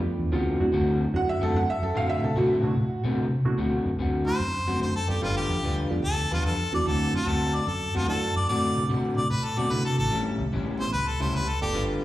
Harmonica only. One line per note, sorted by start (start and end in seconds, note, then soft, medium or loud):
4.27 4.80 C5 medium
4.82 4.95 C5 medium
4.96 5.11 A4 medium
5.09 5.22 G4 medium
5.23 5.36 F4 medium
5.37 5.76 G4 medium
6.05 6.31 A4 loud
6.34 6.45 F4 medium
6.46 6.72 A4 medium
6.74 6.89 D5 medium
6.88 7.14 A4 medium
7.15 7.30 F4 medium
7.28 7.57 A4 medium
7.55 7.70 D5 medium
7.69 7.95 A4 medium
7.97 8.09 F4 medium
8.09 8.35 A4 medium
8.37 8.48 D5 medium
8.49 8.88 D5 loud
9.17 9.30 D5 medium
9.30 9.46 B4 medium
9.45 9.60 A4 medium
9.58 9.73 D5 medium
9.72 9.85 B4 medium
9.85 9.98 A4 medium
9.99 10.21 A4 loud
10.80 10.93 C5 medium
10.93 11.09 B4 loud
11.08 11.23 A4 medium
11.21 11.37 C5 medium
11.35 11.50 B4 medium
11.48 11.61 A4 medium
11.62 11.84 G4 medium